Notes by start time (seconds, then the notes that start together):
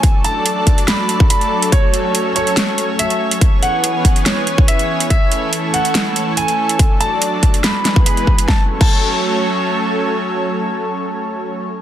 Already playing: A4 G#5
0.03 F#3 A3 D4 D5, kick, closed hi-hat
0.24 A5, closed hi-hat
0.46 closed hi-hat
0.67 kick, closed hi-hat
0.78 closed hi-hat
0.88 B5, snare, closed hi-hat
1.09 closed hi-hat
1.20 kick
1.30 B5, closed hi-hat
1.41 closed hi-hat
1.62 closed hi-hat
1.72 C#4 C#5, kick, closed hi-hat
1.94 closed hi-hat
2.15 closed hi-hat
2.36 C#5, closed hi-hat
2.47 closed hi-hat
2.57 snare, closed hi-hat
2.78 closed hi-hat
2.99 E5, closed hi-hat
3.10 closed hi-hat
3.31 closed hi-hat
3.41 E3 B3 C#4 G#4, kick, closed hi-hat
3.62 F#5, closed hi-hat
3.84 closed hi-hat
4.05 kick, closed hi-hat
4.16 closed hi-hat
4.26 C#5, snare, closed hi-hat
4.47 closed hi-hat
4.58 kick
4.68 E5, closed hi-hat
4.79 closed hi-hat
5.00 closed hi-hat
5.10 E3 A3 A4 E5, kick, closed hi-hat
5.32 closed hi-hat
5.53 closed hi-hat
5.74 F#5, closed hi-hat
5.85 closed hi-hat
5.95 snare, closed hi-hat
6.16 closed hi-hat
6.37 G#5, closed hi-hat
6.48 closed hi-hat
6.69 closed hi-hat
6.79 F#3 D4 D5, kick, closed hi-hat
7.01 A5, closed hi-hat
7.22 closed hi-hat
7.43 kick, closed hi-hat
7.54 closed hi-hat
7.64 E3 G#3 B3 G#4 B4 B5, snare, closed hi-hat
7.85 snare, closed hi-hat
7.96 kick
8.06 B5, closed hi-hat
8.17 closed hi-hat
8.27 kick
8.38 closed hi-hat
8.48 F#3 A3 C#4 A4 C#5 A5, kick, snare
8.81 A5, kick, crash